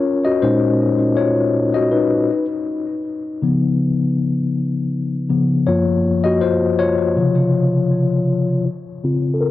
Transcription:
0, 0, Header, 1, 2, 480
1, 0, Start_track
1, 0, Key_signature, -5, "major"
1, 0, Tempo, 750000
1, 1701, Time_signature, 4, 2, 24, 8
1, 6086, End_track
2, 0, Start_track
2, 0, Title_t, "Tine electric piano"
2, 0, Program_c, 0, 4
2, 0, Control_c, 0, 64, 127
2, 0, Note_on_c, 0, 65, 72
2, 0, Note_on_c, 0, 73, 93
2, 131, Note_off_c, 0, 65, 0
2, 157, Note_on_c, 0, 75, 92
2, 164, Note_off_c, 0, 73, 0
2, 166, Note_on_c, 0, 66, 69
2, 206, Note_off_c, 0, 75, 0
2, 212, Note_off_c, 0, 66, 0
2, 269, Note_on_c, 0, 46, 55
2, 269, Note_on_c, 0, 72, 90
2, 272, Note_on_c, 0, 56, 50
2, 277, Note_on_c, 0, 61, 54
2, 277, Note_on_c, 0, 63, 68
2, 720, Note_off_c, 0, 72, 0
2, 723, Note_off_c, 0, 63, 0
2, 746, Note_on_c, 0, 73, 85
2, 756, Note_on_c, 0, 65, 66
2, 1092, Note_off_c, 0, 65, 0
2, 1115, Note_on_c, 0, 75, 86
2, 1123, Note_off_c, 0, 73, 0
2, 1124, Note_on_c, 0, 66, 65
2, 1221, Note_off_c, 0, 66, 0
2, 1225, Note_on_c, 0, 71, 72
2, 1227, Note_off_c, 0, 75, 0
2, 1237, Note_on_c, 0, 63, 57
2, 1439, Note_off_c, 0, 46, 0
2, 1441, Note_off_c, 0, 56, 0
2, 1444, Note_off_c, 0, 61, 0
2, 1469, Control_c, 0, 64, 0
2, 1566, Note_off_c, 0, 71, 0
2, 1572, Note_off_c, 0, 63, 0
2, 1595, Control_c, 0, 64, 127
2, 2190, Note_on_c, 0, 49, 50
2, 2196, Note_on_c, 0, 53, 51
2, 2199, Note_on_c, 0, 59, 56
2, 3383, Note_off_c, 0, 49, 0
2, 3386, Note_off_c, 0, 53, 0
2, 3387, Note_off_c, 0, 59, 0
2, 3390, Note_on_c, 0, 49, 49
2, 3393, Note_on_c, 0, 53, 46
2, 3395, Note_on_c, 0, 59, 49
2, 3602, Note_off_c, 0, 49, 0
2, 3604, Note_off_c, 0, 53, 0
2, 3605, Note_off_c, 0, 59, 0
2, 3627, Note_on_c, 0, 73, 85
2, 3629, Note_on_c, 0, 42, 51
2, 3630, Control_c, 0, 64, 0
2, 3632, Note_on_c, 0, 53, 47
2, 3637, Note_on_c, 0, 58, 55
2, 3638, Note_on_c, 0, 65, 67
2, 3724, Control_c, 0, 64, 127
2, 3973, Note_off_c, 0, 65, 0
2, 3992, Note_on_c, 0, 75, 92
2, 4003, Note_on_c, 0, 66, 76
2, 4004, Note_off_c, 0, 73, 0
2, 4101, Note_off_c, 0, 66, 0
2, 4105, Note_on_c, 0, 72, 95
2, 4106, Note_off_c, 0, 75, 0
2, 4113, Note_on_c, 0, 65, 70
2, 4320, Note_off_c, 0, 42, 0
2, 4321, Note_off_c, 0, 53, 0
2, 4323, Note_off_c, 0, 58, 0
2, 4326, Note_off_c, 0, 72, 0
2, 4331, Note_off_c, 0, 65, 0
2, 4345, Note_on_c, 0, 73, 89
2, 4353, Note_on_c, 0, 65, 66
2, 4584, Note_on_c, 0, 49, 53
2, 4587, Note_on_c, 0, 53, 51
2, 4590, Control_c, 0, 64, 0
2, 4590, Note_on_c, 0, 48, 61
2, 4689, Control_c, 0, 64, 127
2, 5037, Note_off_c, 0, 73, 0
2, 5042, Note_off_c, 0, 65, 0
2, 5277, Note_off_c, 0, 49, 0
2, 5278, Note_off_c, 0, 53, 0
2, 5280, Note_off_c, 0, 48, 0
2, 5550, Control_c, 0, 64, 0
2, 5667, Control_c, 0, 64, 127
2, 5782, Note_on_c, 0, 49, 46
2, 5787, Note_on_c, 0, 60, 42
2, 5791, Note_on_c, 0, 65, 49
2, 5977, Note_on_c, 0, 69, 59
2, 6020, Note_off_c, 0, 69, 0
2, 6020, Note_on_c, 0, 70, 71
2, 6086, Note_off_c, 0, 49, 0
2, 6086, Note_off_c, 0, 60, 0
2, 6086, Note_off_c, 0, 65, 0
2, 6086, Note_off_c, 0, 70, 0
2, 6086, End_track
0, 0, End_of_file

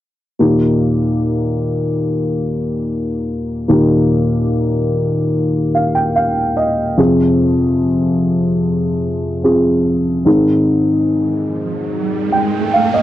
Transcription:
0, 0, Header, 1, 3, 480
1, 0, Start_track
1, 0, Key_signature, -3, "major"
1, 0, Tempo, 821918
1, 238, Time_signature, 4, 2, 24, 8
1, 7606, End_track
2, 0, Start_track
2, 0, Title_t, "Upright piano"
2, 0, Program_c, 0, 0
2, 229, Note_on_c, 0, 58, 38
2, 234, Note_on_c, 0, 46, 37
2, 235, Note_on_c, 0, 63, 34
2, 236, Note_on_c, 0, 39, 36
2, 242, Note_on_c, 0, 67, 41
2, 332, Control_c, 0, 64, 127
2, 2130, Note_off_c, 0, 58, 0
2, 2133, Note_off_c, 0, 46, 0
2, 2133, Note_off_c, 0, 63, 0
2, 2134, Note_off_c, 0, 39, 0
2, 2137, Note_off_c, 0, 67, 0
2, 2151, Note_on_c, 0, 58, 43
2, 2157, Note_on_c, 0, 39, 39
2, 2157, Note_on_c, 0, 63, 38
2, 2158, Note_on_c, 0, 46, 39
2, 2162, Note_on_c, 0, 67, 45
2, 3356, Note_on_c, 0, 77, 39
2, 3468, Note_off_c, 0, 77, 0
2, 3474, Note_on_c, 0, 79, 44
2, 3588, Note_off_c, 0, 79, 0
2, 3595, Note_on_c, 0, 77, 47
2, 3820, Note_off_c, 0, 77, 0
2, 3836, Note_on_c, 0, 75, 43
2, 4051, Note_off_c, 0, 58, 0
2, 4054, Note_off_c, 0, 39, 0
2, 4054, Note_off_c, 0, 63, 0
2, 4055, Note_off_c, 0, 46, 0
2, 4057, Note_off_c, 0, 67, 0
2, 4060, Note_off_c, 0, 75, 0
2, 4069, Note_on_c, 0, 60, 42
2, 4073, Note_on_c, 0, 65, 39
2, 4075, Note_on_c, 0, 41, 43
2, 4075, Note_on_c, 0, 48, 41
2, 4081, Note_on_c, 0, 68, 48
2, 4087, Control_c, 0, 64, 0
2, 4192, Control_c, 0, 64, 127
2, 5491, Note_off_c, 0, 60, 0
2, 5493, Note_off_c, 0, 65, 0
2, 5497, Note_off_c, 0, 68, 0
2, 5508, Note_on_c, 0, 60, 38
2, 5514, Note_on_c, 0, 65, 35
2, 5514, Note_on_c, 0, 68, 42
2, 5973, Note_off_c, 0, 41, 0
2, 5974, Note_off_c, 0, 48, 0
2, 5977, Note_off_c, 0, 60, 0
2, 5985, Note_on_c, 0, 60, 44
2, 5987, Note_off_c, 0, 68, 0
2, 5991, Note_on_c, 0, 44, 46
2, 5991, Note_on_c, 0, 63, 39
2, 5992, Note_on_c, 0, 51, 44
2, 5996, Note_off_c, 0, 65, 0
2, 5996, Note_on_c, 0, 68, 48
2, 6006, Control_c, 0, 64, 0
2, 6104, Control_c, 0, 64, 127
2, 7197, Note_on_c, 0, 79, 45
2, 7421, Note_off_c, 0, 79, 0
2, 7438, Note_on_c, 0, 77, 49
2, 7550, Note_off_c, 0, 77, 0
2, 7556, Note_on_c, 0, 75, 49
2, 7606, Note_off_c, 0, 44, 0
2, 7606, Note_off_c, 0, 51, 0
2, 7606, Note_off_c, 0, 60, 0
2, 7606, Note_off_c, 0, 63, 0
2, 7606, Note_off_c, 0, 68, 0
2, 7606, Note_off_c, 0, 75, 0
2, 7606, End_track
3, 0, Start_track
3, 0, Title_t, "Riser"
3, 0, Program_c, 1, 103
3, 5998, Note_on_c, 1, 60, 51
3, 7606, Note_off_c, 1, 60, 0
3, 7606, End_track
0, 0, End_of_file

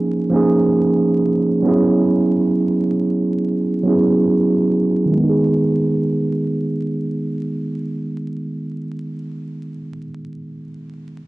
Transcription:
0, 0, Header, 1, 2, 480
1, 0, Start_track
1, 0, Key_signature, 5, "minor"
1, 0, Tempo, 500000
1, 10824, End_track
2, 0, Start_track
2, 0, Title_t, "Tine electric piano"
2, 0, Program_c, 0, 4
2, 0, Control_c, 0, 64, 127
2, 0, Note_on_c, 0, 53, 88
2, 0, Note_on_c, 0, 58, 80
2, 0, Note_on_c, 0, 61, 80
2, 0, Note_on_c, 0, 63, 76
2, 0, Note_on_c, 0, 68, 97
2, 285, Note_off_c, 0, 53, 0
2, 285, Note_on_c, 0, 53, 70
2, 301, Note_off_c, 0, 58, 0
2, 301, Note_on_c, 0, 58, 70
2, 315, Note_off_c, 0, 61, 0
2, 315, Note_on_c, 0, 61, 76
2, 329, Note_off_c, 0, 63, 0
2, 329, Note_on_c, 0, 63, 70
2, 344, Note_off_c, 0, 68, 0
2, 344, Note_on_c, 0, 68, 90
2, 1121, Note_off_c, 0, 53, 0
2, 1129, Note_off_c, 0, 58, 0
2, 1136, Note_off_c, 0, 61, 0
2, 1143, Note_off_c, 0, 63, 0
2, 1151, Note_off_c, 0, 68, 0
2, 1557, Note_on_c, 0, 54, 88
2, 1571, Note_on_c, 0, 59, 81
2, 1580, Control_c, 0, 64, 0
2, 1584, Note_on_c, 0, 61, 75
2, 1600, Note_on_c, 0, 64, 81
2, 1614, Note_on_c, 0, 68, 92
2, 1730, Control_c, 0, 64, 127
2, 2705, Note_off_c, 0, 54, 0
2, 2712, Note_off_c, 0, 59, 0
2, 2719, Note_off_c, 0, 61, 0
2, 2727, Note_off_c, 0, 64, 0
2, 2734, Note_off_c, 0, 68, 0
2, 3679, Note_on_c, 0, 54, 78
2, 3694, Note_on_c, 0, 59, 69
2, 3707, Note_on_c, 0, 61, 67
2, 3722, Note_on_c, 0, 64, 69
2, 3736, Note_on_c, 0, 68, 86
2, 4512, Note_off_c, 0, 54, 0
2, 4520, Note_off_c, 0, 59, 0
2, 4527, Note_off_c, 0, 61, 0
2, 4534, Note_off_c, 0, 64, 0
2, 4541, Note_off_c, 0, 68, 0
2, 4850, Note_on_c, 0, 51, 71
2, 4909, Note_on_c, 0, 56, 66
2, 4965, Note_on_c, 0, 59, 67
2, 4970, Control_c, 0, 64, 0
2, 5025, Note_on_c, 0, 63, 65
2, 5081, Note_on_c, 0, 68, 83
2, 5163, Control_c, 0, 64, 127
2, 9357, Note_off_c, 0, 51, 0
2, 9416, Note_off_c, 0, 56, 0
2, 9472, Note_off_c, 0, 59, 0
2, 9532, Note_off_c, 0, 63, 0
2, 9588, Note_off_c, 0, 68, 0
2, 10761, Control_c, 0, 64, 0
2, 10824, End_track
0, 0, End_of_file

